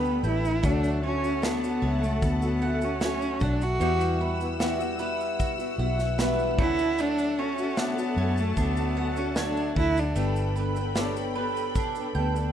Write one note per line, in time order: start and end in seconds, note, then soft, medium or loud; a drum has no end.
0.00 0.20 D2 medium
0.00 0.22 G3 medium
0.00 0.62 A3 medium
0.00 0.24 B3 medium
0.00 0.25 B3 loud
0.00 0.66 B3 medium
0.00 0.25 D4 medium
0.00 1.06 D4 medium
0.00 0.61 G4 medium
0.00 0.25 A4 medium
0.00 0.61 A4 medium
0.00 0.72 B4 medium
0.00 0.64 F#5 medium
0.00 0.23 G5 medium
0.00 0.61 B5 medium
0.05 shaker soft
0.23 0.60 A1 medium
0.23 0.44 G3 medium
0.23 0.45 B3 medium
0.23 0.44 D4 medium
0.23 0.66 E4 loud
0.23 0.43 A4 medium
0.23 0.72 G5 medium
0.23 shaker soft
0.44 0.64 B3 soft
0.44 0.65 D4 soft
0.44 0.64 A4 soft
0.44 shaker medium
0.62 1.79 D2 loud
0.62 1.03 D3 medium
0.62 1.02 F#3 medium
0.62 3.80 A3 medium
0.62 1.03 A3 medium
0.62 1.17 D4 medium
0.62 1.04 D4 loud
0.62 1.04 F#4 medium
0.62 3.78 A4 medium
0.62 1.17 C#5 medium
0.62 1.18 F#5 medium
0.62 3.79 F#5 medium
0.62 3.78 A5 medium
0.62 kick loud
0.62 shaker medium
0.84 shaker medium
1.03 1.23 F#3 medium
1.03 1.24 A3 medium
1.03 1.45 C#4 loud
1.03 1.22 C#4 medium
1.03 1.21 F#4 medium
1.03 1.81 C#5 soft
1.22 1.41 A3 soft
1.22 1.42 C#4 soft
1.22 1.42 F#4 medium
1.22 shaker soft
1.41 1.62 D3 medium
1.41 1.62 F#3 medium
1.41 1.63 A3 medium
1.41 2.05 B3 loud
1.41 1.63 C#4 medium
1.41 2.50 D4 medium
1.41 2.22 D4 medium
1.41 1.61 F#4 medium
1.41 2.51 C#5 medium
1.41 2.51 A5 medium
1.41 snare loud
1.41 shaker medium
1.62 1.82 A3 soft
1.62 1.83 C#4 medium
1.62 1.83 F#4 medium
1.62 shaker medium
1.81 2.19 C#2 medium
1.81 2.42 F#3 medium
1.81 2.42 A3 medium
1.81 2.42 C#4 medium
1.81 2.41 F#4 medium
1.81 3.00 C#5 medium
2.03 2.25 A3 medium
2.03 shaker medium
2.22 3.37 D2 loud
2.22 2.86 B3 loud
2.22 kick medium
2.22 shaker medium
2.42 2.61 A3 soft
2.42 2.62 C#4 soft
2.42 2.62 F#4 medium
2.42 shaker medium
2.61 2.82 F#3 medium
2.61 2.82 A3 medium
2.61 2.81 C#4 medium
2.61 2.79 F#4 medium
2.61 3.42 F#5 medium
2.80 3.00 A3 soft
2.80 3.00 C#4 medium
2.80 3.03 C#4 medium
2.80 3.01 F#4 medium
2.80 shaker medium
3.00 3.40 D3 medium
3.00 3.39 F#3 medium
3.00 3.40 A3 medium
3.00 3.41 C#4 medium
3.00 3.42 F#4 medium
3.00 3.89 C#5 medium
3.00 snare loud
3.00 shaker medium
3.04 3.44 C#4 loud
3.22 shaker soft
3.40 3.78 B1 loud
3.40 3.79 F#3 medium
3.40 3.79 A3 medium
3.40 3.80 C#4 medium
3.40 3.65 D4 medium
3.40 3.80 F#4 medium
3.40 5.79 F#5 medium
3.40 kick loud
3.40 shaker soft
3.61 4.42 F#4 loud
3.61 shaker medium
3.79 5.75 E2 loud
3.79 4.20 E3 medium
3.79 4.17 G3 medium
3.79 4.35 G3 medium
3.79 6.58 G3 medium
3.79 6.56 G3 medium
3.79 4.19 B3 medium
3.79 4.34 E4 medium
3.79 4.19 E4 medium
3.79 4.20 F#4 medium
3.79 10.13 F#5 medium
3.79 4.36 F#5 medium
3.79 6.57 E6 medium
3.79 shaker medium
4.01 shaker medium
4.18 4.39 G3 medium
4.18 4.40 B3 medium
4.18 4.39 E4 medium
4.18 4.38 F#4 medium
4.18 4.98 B4 medium
4.39 4.59 B3 soft
4.39 4.59 E4 soft
4.39 4.60 F#4 soft
4.39 shaker medium
4.59 4.80 E3 medium
4.59 4.80 G3 medium
4.59 4.79 B3 medium
4.59 5.68 E4 medium
4.59 4.78 E4 medium
4.59 5.39 F#4 medium
4.59 4.77 F#4 medium
4.59 5.68 G4 medium
4.59 5.68 F#5 loud
4.59 snare loud
4.59 shaker medium
4.78 4.97 B3 medium
4.78 4.98 E4 medium
4.78 4.99 F#4 medium
4.78 shaker medium
4.98 5.59 G3 medium
4.98 5.59 B3 medium
4.98 5.58 E4 medium
4.98 5.56 F#4 medium
4.98 6.17 B4 medium
4.98 shaker medium
5.20 shaker soft
5.39 8.57 F#4 medium
5.39 kick medium
5.39 shaker medium
5.58 5.77 B3 soft
5.58 5.78 E4 medium
5.58 5.79 F#4 medium
5.58 shaker medium
5.76 6.58 B1 medium
5.76 5.98 G3 medium
5.76 5.99 B3 medium
5.76 5.99 E4 medium
5.76 5.98 F#4 medium
5.76 8.96 F#5 medium
5.99 6.18 B3 medium
5.99 6.18 E4 medium
5.99 6.19 F#4 medium
5.99 snare soft
5.99 shaker medium
6.18 6.58 E3 loud
6.18 6.57 G3 medium
6.18 6.59 B3 loud
6.18 6.59 E4 medium
6.18 6.59 F#4 loud
6.18 6.67 B4 medium
6.18 snare loud
6.18 shaker medium
6.39 shaker soft
6.57 8.14 D2 loud
6.57 6.78 F#3 medium
6.57 6.98 A3 medium
6.57 6.79 A3 medium
6.57 6.78 C#4 medium
6.57 7.54 D4 medium
6.57 7.02 E4 loud
6.57 6.76 F#4 medium
6.57 10.13 A4 medium
6.57 7.54 C#5 medium
6.57 6.65 E5 medium
6.57 10.13 A5 loud
6.57 kick loud
6.66 7.58 F#5 medium
6.78 6.98 A3 soft
6.78 6.99 C#4 soft
6.78 6.98 F#4 soft
6.78 shaker medium
6.98 7.38 D3 medium
6.98 7.36 F#3 medium
6.98 7.77 A3 medium
6.98 7.37 A3 medium
6.98 7.40 D4 loud
6.98 7.39 F#4 medium
6.98 shaker medium
7.18 shaker medium
7.38 7.58 F#3 medium
7.38 7.58 A3 medium
7.38 7.81 C#4 medium
7.38 7.59 C#4 medium
7.38 7.57 F#4 medium
7.38 8.16 C#5 medium
7.58 7.78 A3 soft
7.58 7.78 C#4 medium
7.58 7.78 F#4 medium
7.58 shaker medium
7.77 7.98 D3 medium
7.77 7.98 F#3 medium
7.77 7.99 A3 medium
7.77 8.41 B3 loud
7.77 7.97 C#4 medium
7.77 8.85 D4 medium
7.77 8.57 D4 medium
7.77 7.95 F#4 medium
7.77 8.86 C#5 medium
7.77 8.86 F#5 medium
7.77 snare loud
7.77 shaker medium
7.97 8.16 A3 soft
7.97 8.17 C#4 medium
7.97 8.17 F#4 medium
7.97 shaker medium
8.16 8.54 F#2 loud
8.16 8.77 F#3 medium
8.16 8.77 A3 medium
8.16 8.77 C#4 medium
8.16 8.75 F#4 medium
8.16 9.35 C#5 medium
8.37 8.59 A3 medium
8.37 shaker medium
8.57 9.73 D2 loud
8.57 9.19 B3 loud
8.57 10.96 D4 medium
8.57 kick medium
8.57 shaker medium
8.76 8.95 A3 soft
8.76 8.96 C#4 medium
8.76 8.97 F#4 medium
8.76 shaker medium
8.95 9.16 F#3 medium
8.95 9.17 A3 medium
8.95 9.16 C#4 medium
8.95 9.15 F#4 medium
8.95 9.75 F#5 medium
9.16 9.35 A3 soft
9.16 9.37 C#4 soft
9.16 9.39 C#4 medium
9.16 9.35 F#4 medium
9.16 shaker medium
9.34 9.76 D3 medium
9.34 9.73 F#3 medium
9.34 9.74 A3 medium
9.34 9.77 D4 loud
9.34 9.76 F#4 medium
9.34 10.24 C#5 medium
9.34 snare loud
9.34 shaker medium
9.57 shaker soft
9.74 10.13 D2 loud
9.74 10.15 F#3 medium
9.74 10.15 A3 medium
9.74 10.16 C#4 medium
9.74 10.17 F#4 medium
9.74 10.24 F#5 medium
9.74 kick loud
9.78 10.01 E4 loud
9.97 10.78 D4 medium
9.97 shaker medium
10.15 12.11 G1 loud
10.15 10.54 G3 medium
10.15 10.95 A3 medium
10.15 10.70 B3 medium
10.15 10.55 B3 medium
10.15 10.56 D4 medium
10.15 10.70 A4 medium
10.15 10.57 A4 medium
10.15 12.52 A4 medium
10.15 12.52 G5 medium
10.15 10.71 G5 medium
10.15 12.52 B5 medium
10.15 shaker medium
10.36 shaker medium
10.55 10.76 G3 medium
10.55 10.76 B3 medium
10.55 10.75 D4 medium
10.55 10.74 A4 medium
10.55 11.34 B4 medium
10.55 shaker soft
10.75 10.95 B3 soft
10.75 10.95 D4 medium
10.75 10.96 A4 medium
10.75 shaker medium
10.95 11.16 G3 medium
10.95 12.04 B3 medium
10.95 11.16 B3 medium
10.95 11.76 D4 medium
10.95 11.15 D4 medium
10.95 12.04 A4 medium
10.95 11.13 A4 medium
10.95 11.03 C#5 medium
10.95 snare loud
10.95 shaker medium
11.04 12.08 D5 loud
11.14 11.35 B3 soft
11.14 11.36 D4 medium
11.14 11.35 A4 medium
11.14 shaker medium
11.35 11.95 G3 medium
11.35 11.96 B3 medium
11.35 11.96 D4 medium
11.35 11.94 A4 medium
11.35 12.52 B4 medium
11.56 shaker medium
11.75 12.52 D4 medium
11.75 kick medium
11.75 shaker medium
11.95 12.16 B3 medium
11.95 12.16 D4 medium
11.95 12.15 A4 medium
11.95 shaker medium
12.15 12.52 D2 loud
12.15 12.35 G3 medium
12.15 12.36 B3 medium
12.15 12.36 D4 medium
12.15 12.34 A4 medium
12.15 12.52 G5 medium
12.36 12.52 B3 soft
12.36 12.52 D4 medium
12.36 12.52 A4 medium
12.36 shaker medium